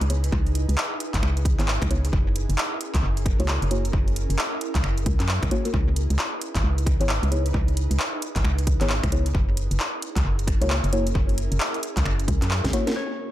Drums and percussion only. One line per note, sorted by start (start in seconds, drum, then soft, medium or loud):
0.01 closed hi-hat medium
0.10 closed hi-hat loud
0.24 closed hi-hat medium
0.32 finger snap soft
0.32 kick loud
0.47 closed hi-hat soft
0.55 closed hi-hat loud
0.69 closed hi-hat medium
0.78 clap loud
1.00 closed hi-hat loud
1.14 kick medium
1.14 clap medium
1.14 closed hi-hat medium
1.23 finger snap medium
1.37 closed hi-hat soft
1.45 kick loud
1.45 closed hi-hat loud
1.60 clap medium
1.60 closed hi-hat medium
1.68 clap loud
1.82 finger snap medium
1.82 kick loud
1.82 closed hi-hat soft
1.91 closed hi-hat loud
2.05 closed hi-hat medium
2.13 finger snap soft
2.13 kick loud
2.36 closed hi-hat loud
2.50 closed hi-hat medium
2.58 clap loud
2.81 closed hi-hat loud
2.95 kick medium
2.95 clap medium
2.95 closed hi-hat medium
3.17 closed hi-hat soft
3.26 finger snap soft
3.26 kick loud
3.26 closed hi-hat medium
3.40 closed hi-hat medium
3.48 clap loud
3.62 closed hi-hat soft
3.71 closed hi-hat loud
3.85 closed hi-hat medium
3.93 finger snap soft
3.93 kick loud
4.08 closed hi-hat soft
4.16 closed hi-hat loud
4.30 closed hi-hat medium
4.39 clap loud
4.61 closed hi-hat medium
4.75 kick medium
4.75 clap medium
4.75 closed hi-hat medium
4.84 finger snap medium
4.98 closed hi-hat soft
5.06 kick loud
5.06 closed hi-hat loud
5.20 clap medium
5.20 closed hi-hat medium
5.29 clap loud
5.43 finger snap medium
5.43 kick loud
5.43 closed hi-hat soft
5.51 closed hi-hat loud
5.65 closed hi-hat medium
5.74 finger snap soft
5.74 kick loud
5.96 closed hi-hat loud
6.10 closed hi-hat medium
6.19 clap loud
6.41 closed hi-hat loud
6.55 kick medium
6.55 clap medium
6.55 closed hi-hat medium
6.78 closed hi-hat soft
6.87 finger snap soft
6.87 kick loud
6.87 closed hi-hat loud
7.01 closed hi-hat medium
7.09 clap loud
7.23 closed hi-hat soft
7.32 closed hi-hat loud
7.46 closed hi-hat medium
7.54 finger snap soft
7.54 kick loud
7.68 closed hi-hat soft
7.77 closed hi-hat loud
7.91 closed hi-hat medium
8.00 clap loud
8.22 closed hi-hat loud
8.36 kick medium
8.36 clap medium
8.36 closed hi-hat medium
8.45 finger snap medium
8.58 closed hi-hat medium
8.67 kick loud
8.67 closed hi-hat loud
8.81 clap medium
8.81 closed hi-hat medium
8.90 clap loud
9.04 finger snap medium
9.04 kick loud
9.04 closed hi-hat medium
9.12 closed hi-hat loud
9.26 closed hi-hat medium
9.35 finger snap soft
9.35 kick loud
9.57 closed hi-hat loud
9.71 closed hi-hat medium
9.80 clap loud
10.02 closed hi-hat loud
10.16 kick medium
10.16 clap medium
10.16 closed hi-hat medium
10.39 closed hi-hat medium
10.47 finger snap soft
10.47 kick loud
10.47 closed hi-hat loud
10.62 closed hi-hat medium
10.70 clap loud
10.84 closed hi-hat medium
10.93 closed hi-hat loud
11.07 closed hi-hat medium
11.15 finger snap soft
11.15 kick loud
11.29 closed hi-hat soft
11.38 closed hi-hat loud
11.52 closed hi-hat medium
11.60 clap loud
11.74 closed hi-hat soft
11.83 closed hi-hat loud
11.97 kick medium
11.97 clap medium
11.97 closed hi-hat medium
12.06 finger snap medium
12.20 closed hi-hat medium
12.28 kick loud
12.28 closed hi-hat loud
12.42 clap medium
12.42 closed hi-hat medium
12.51 clap loud
12.64 kick loud
12.64 snare medium
12.64 closed hi-hat medium
12.73 closed hi-hat loud
12.87 snare loud
12.87 closed hi-hat medium